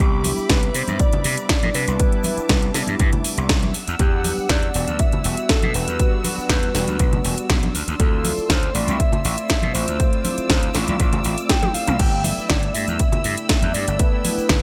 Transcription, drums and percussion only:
0.00 kick
0.24 open hi-hat, high conga, shaker
0.37 shaker
0.49 kick, snare, closed hi-hat, shaker
0.63 closed hi-hat
0.74 open hi-hat, shaker
0.88 closed hi-hat, high conga, shaker
0.99 kick, closed hi-hat, shaker
1.13 closed hi-hat, low conga
1.24 open hi-hat, shaker
1.37 closed hi-hat, shaker
1.49 kick, snare, closed hi-hat, shaker
1.63 closed hi-hat, high conga
1.74 open hi-hat, shaker
1.88 closed hi-hat, shaker
2.00 kick, closed hi-hat, shaker
2.12 closed hi-hat
2.24 open hi-hat, high conga, shaker
2.38 closed hi-hat, shaker
2.49 kick, snare, closed hi-hat, shaker
2.62 closed hi-hat
2.74 snare, open hi-hat, shaker
2.87 closed hi-hat, high conga, shaker
2.99 kick, closed hi-hat, shaker
3.13 closed hi-hat, low conga
3.24 open hi-hat, shaker
3.38 closed hi-hat, shaker
3.49 kick, snare, closed hi-hat, shaker
3.63 closed hi-hat, high conga
3.74 open hi-hat, shaker
3.88 closed hi-hat, shaker
3.99 kick, closed hi-hat, shaker
4.24 open hi-hat, high conga, shaker
4.38 shaker
4.49 kick, snare, closed hi-hat, shaker
4.63 closed hi-hat
4.74 open hi-hat, shaker
4.88 closed hi-hat, high conga, shaker
4.99 kick, closed hi-hat, shaker
5.12 closed hi-hat, low conga
5.24 open hi-hat, shaker
5.37 closed hi-hat, shaker
5.49 kick, snare, closed hi-hat, shaker
5.62 closed hi-hat, high conga
5.74 open hi-hat, shaker
5.88 closed hi-hat, shaker
5.99 kick, closed hi-hat, shaker
6.24 open hi-hat, high conga, shaker
6.38 shaker
6.49 kick, snare, closed hi-hat, shaker
6.63 closed hi-hat
6.75 snare, open hi-hat, shaker
6.88 closed hi-hat, high conga, shaker
6.99 kick, closed hi-hat, shaker
7.13 closed hi-hat, low conga
7.24 open hi-hat, shaker
7.37 closed hi-hat, shaker
7.49 kick, snare, closed hi-hat, shaker
7.63 closed hi-hat, high conga
7.75 open hi-hat, shaker
7.88 closed hi-hat, shaker
8.00 kick, closed hi-hat, shaker
8.25 open hi-hat, high conga, shaker
8.38 shaker
8.50 kick, snare, closed hi-hat, shaker
8.63 closed hi-hat
8.75 open hi-hat, shaker
8.88 closed hi-hat, high conga, shaker
9.00 kick, closed hi-hat, shaker
9.12 closed hi-hat, low conga
9.24 open hi-hat, shaker
9.37 closed hi-hat, shaker
9.49 kick, snare, closed hi-hat, shaker
9.62 closed hi-hat, high conga
9.75 open hi-hat, shaker
9.88 closed hi-hat, shaker
10.00 kick, closed hi-hat, shaker
10.13 closed hi-hat
10.24 open hi-hat, high conga, shaker
10.38 closed hi-hat, shaker
10.50 kick, snare, closed hi-hat, shaker
10.63 closed hi-hat
10.74 snare, open hi-hat, shaker
10.87 closed hi-hat, high conga, shaker
11.00 kick, closed hi-hat, shaker
11.13 closed hi-hat, low conga
11.24 open hi-hat, shaker
11.38 closed hi-hat, shaker
11.49 kick, snare, closed hi-hat, high tom, shaker
11.63 closed hi-hat, high tom, high conga
11.74 open hi-hat, shaker
11.87 closed hi-hat, mid tom, shaker
11.99 kick, closed hi-hat, crash, shaker
12.24 open hi-hat, high conga, shaker
12.38 shaker
12.49 kick, snare, closed hi-hat, shaker
12.63 closed hi-hat
12.74 open hi-hat, shaker
12.88 closed hi-hat, high conga, shaker
12.99 kick, closed hi-hat, shaker
13.12 closed hi-hat, low conga
13.24 open hi-hat, shaker
13.37 closed hi-hat, shaker
13.49 kick, snare, closed hi-hat, shaker
13.62 closed hi-hat, high conga
13.74 open hi-hat, shaker
13.88 closed hi-hat, shaker
13.99 kick, closed hi-hat, shaker
14.25 open hi-hat, high conga, shaker
14.38 shaker
14.49 kick, snare, closed hi-hat, shaker

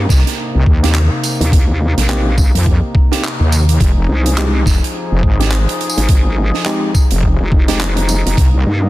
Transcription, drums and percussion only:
0.09 kick, snare, tambourine
0.18 snare
0.27 snare, closed hi-hat
0.32 snare
0.66 kick
0.84 snare, closed hi-hat
0.95 clap, closed hi-hat
1.24 closed hi-hat, tambourine
1.41 closed hi-hat
1.52 kick, closed hi-hat
1.98 snare, closed hi-hat
2.09 clap, closed hi-hat
2.38 kick, tambourine
2.55 closed hi-hat
2.57 closed hi-hat
2.63 kick, closed hi-hat
2.95 kick
3.12 snare, closed hi-hat
3.24 clap, closed hi-hat
3.52 closed hi-hat, tambourine
3.69 closed hi-hat
3.80 kick, closed hi-hat
4.26 closed hi-hat
4.37 clap, closed hi-hat
4.66 kick, snare, tambourine
4.84 closed hi-hat
5.23 kick
5.41 snare, closed hi-hat
5.52 clap, closed hi-hat
5.69 closed hi-hat
5.81 closed hi-hat
5.90 tambourine
5.98 closed hi-hat
6.09 kick, closed hi-hat
6.54 snare
6.66 clap, closed hi-hat
6.95 kick, tambourine
7.11 closed hi-hat
7.23 kick
7.52 kick
7.68 snare, closed hi-hat
7.81 clap, closed hi-hat
7.97 closed hi-hat
8.09 closed hi-hat, tambourine
8.27 closed hi-hat
8.37 kick, closed hi-hat

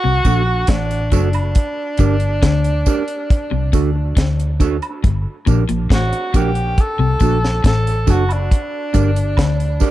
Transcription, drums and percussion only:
0.25 kick, closed hi-hat, tambourine
0.67 kick, snare, closed hi-hat
0.91 closed hi-hat
1.12 kick, closed hi-hat, tambourine
1.33 closed hi-hat, high woodblock
1.55 kick, closed hi-hat
1.97 kick, closed hi-hat, tambourine
2.20 closed hi-hat
2.42 kick, snare, closed hi-hat
2.64 closed hi-hat
2.86 kick, closed hi-hat, tambourine
3.08 closed hi-hat
3.30 kick, closed hi-hat
3.73 kick, closed hi-hat, tambourine
4.17 kick, snare, closed hi-hat
4.40 closed hi-hat
4.60 kick, closed hi-hat, tambourine
4.82 closed hi-hat, high woodblock
5.04 kick, closed hi-hat
5.47 kick, closed hi-hat, tambourine
5.69 closed hi-hat
5.90 kick, snare, closed hi-hat
6.13 closed hi-hat
6.34 kick, closed hi-hat, tambourine
6.55 closed hi-hat
6.78 kick, closed hi-hat
7.20 kick, closed hi-hat, tambourine
7.44 snare
7.64 kick, snare, closed hi-hat
7.87 closed hi-hat
8.07 kick, closed hi-hat, tambourine
8.29 closed hi-hat, high woodblock
8.51 kick, closed hi-hat
8.94 kick, closed hi-hat, tambourine
9.16 closed hi-hat
9.37 kick, snare, closed hi-hat, high woodblock
9.60 closed hi-hat
9.80 kick, closed hi-hat, tambourine

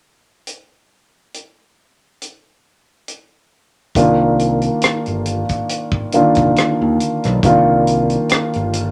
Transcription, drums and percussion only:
0.47 closed hi-hat
1.34 closed hi-hat
2.22 closed hi-hat
3.08 closed hi-hat
3.95 kick, closed hi-hat
4.39 closed hi-hat
4.62 closed hi-hat
4.82 cross-stick, closed hi-hat
5.06 closed hi-hat
5.26 closed hi-hat
5.49 kick, closed hi-hat
5.69 closed hi-hat
5.92 kick
6.12 closed hi-hat
6.35 kick, closed hi-hat
6.56 cross-stick, closed hi-hat
7.00 closed hi-hat
7.24 cross-stick, closed hi-hat
7.43 kick, closed hi-hat
7.87 closed hi-hat
8.10 closed hi-hat
8.29 cross-stick, closed hi-hat
8.53 closed hi-hat
8.73 closed hi-hat

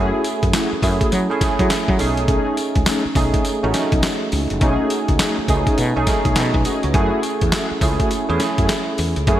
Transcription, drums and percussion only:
0.24 closed hi-hat, tambourine
0.43 kick, closed hi-hat
0.53 snare, clap, closed hi-hat, tambourine
0.82 kick, open hi-hat, tambourine
1.01 kick, closed hi-hat
1.12 closed hi-hat, tambourine
1.41 kick, snare, closed hi-hat, tambourine
1.59 kick, closed hi-hat
1.70 snare, clap, closed hi-hat, tambourine
1.88 kick
1.99 open hi-hat, tambourine
2.17 closed hi-hat
2.28 kick, closed hi-hat
2.57 closed hi-hat, tambourine
2.75 kick, closed hi-hat
2.86 snare, clap, closed hi-hat, tambourine
3.15 kick, open hi-hat, tambourine
3.34 kick, closed hi-hat
3.45 closed hi-hat, tambourine
3.74 snare, closed hi-hat, tambourine
3.92 kick, closed hi-hat
4.03 snare, clap, closed hi-hat, tambourine
4.32 open hi-hat, tambourine
4.50 closed hi-hat
4.61 kick, closed hi-hat
4.90 closed hi-hat, tambourine
5.08 kick, closed hi-hat
5.19 snare, clap, closed hi-hat, tambourine
5.48 kick, closed hi-hat, tambourine
5.67 kick, closed hi-hat
5.78 closed hi-hat, tambourine
6.07 kick, snare, closed hi-hat, tambourine
6.25 kick, closed hi-hat
6.36 snare, clap, closed hi-hat, tambourine
6.54 kick
6.65 closed hi-hat, tambourine
6.83 closed hi-hat
6.94 kick, closed hi-hat
7.23 closed hi-hat, tambourine
7.41 kick, closed hi-hat
7.52 snare, clap, closed hi-hat, tambourine
7.81 kick, open hi-hat, tambourine
8.00 kick, closed hi-hat
8.11 closed hi-hat, tambourine
8.40 snare, closed hi-hat, tambourine
8.58 kick, closed hi-hat
8.69 snare, clap, closed hi-hat, tambourine
8.98 open hi-hat, tambourine
9.16 closed hi-hat
9.27 kick, closed hi-hat

